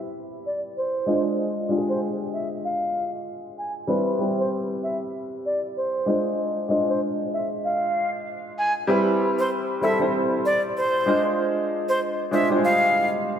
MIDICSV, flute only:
0, 0, Header, 1, 2, 480
1, 0, Start_track
1, 0, Key_signature, 0, "major"
1, 0, Tempo, 625000
1, 1064, Time_signature, 4, 2, 24, 8
1, 10287, End_track
2, 0, Start_track
2, 0, Title_t, "Flute"
2, 0, Program_c, 0, 73
2, 354, Note_on_c, 0, 74, 72
2, 468, Note_off_c, 0, 74, 0
2, 592, Note_on_c, 0, 72, 75
2, 945, Note_off_c, 0, 72, 0
2, 1451, Note_on_c, 0, 72, 75
2, 1534, Note_off_c, 0, 72, 0
2, 1792, Note_on_c, 0, 76, 74
2, 1907, Note_off_c, 0, 76, 0
2, 2033, Note_on_c, 0, 77, 92
2, 2385, Note_off_c, 0, 77, 0
2, 2752, Note_on_c, 0, 80, 78
2, 2867, Note_off_c, 0, 80, 0
2, 3371, Note_on_c, 0, 72, 76
2, 3454, Note_off_c, 0, 72, 0
2, 3712, Note_on_c, 0, 76, 76
2, 3827, Note_off_c, 0, 76, 0
2, 4191, Note_on_c, 0, 74, 73
2, 4307, Note_off_c, 0, 74, 0
2, 4430, Note_on_c, 0, 72, 79
2, 4784, Note_off_c, 0, 72, 0
2, 5290, Note_on_c, 0, 72, 80
2, 5373, Note_off_c, 0, 72, 0
2, 5633, Note_on_c, 0, 76, 73
2, 5748, Note_off_c, 0, 76, 0
2, 5873, Note_on_c, 0, 77, 94
2, 6225, Note_off_c, 0, 77, 0
2, 6592, Note_on_c, 0, 80, 77
2, 6707, Note_off_c, 0, 80, 0
2, 7211, Note_on_c, 0, 72, 77
2, 7294, Note_off_c, 0, 72, 0
2, 7550, Note_on_c, 0, 76, 77
2, 7666, Note_off_c, 0, 76, 0
2, 8031, Note_on_c, 0, 74, 81
2, 8146, Note_off_c, 0, 74, 0
2, 8271, Note_on_c, 0, 72, 76
2, 8624, Note_off_c, 0, 72, 0
2, 9130, Note_on_c, 0, 72, 84
2, 9213, Note_off_c, 0, 72, 0
2, 9471, Note_on_c, 0, 76, 78
2, 9587, Note_off_c, 0, 76, 0
2, 9711, Note_on_c, 0, 77, 97
2, 10065, Note_off_c, 0, 77, 0
2, 10287, End_track
0, 0, End_of_file